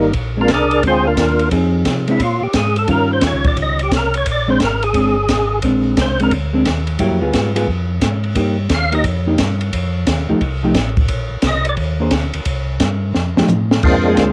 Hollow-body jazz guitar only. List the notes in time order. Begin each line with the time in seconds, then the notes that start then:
0.37 G#3 C4 D4
0.83 G#3 C4 D4
1.51 F3 C4 D#4 G#4
2.08 G#3 C4 D4
2.88 D#3 G3 C#4 F4
4.48 G#3 C4 D4
4.93 G#3 C4 D4
5.63 G#3 C4 D4
6.20 G#3 C4 D4
6.53 G#3 C4 D4
6.99 F#3 A#3 E4 G4
7.21 G3 B3 F4 G#4
7.55 G3 B3 F4 G#4
8.35 A#3 D#4 G4
8.92 A#3 D#4 G4
9.27 A#3 D#4 G4
10.29 F3 A3 D#4 G4
10.63 F3 A3 D#4 G4
12.00 A#3 D4 G#4 C5
13.37 F3 A3 D#4 G4
14.08 G#3 G#4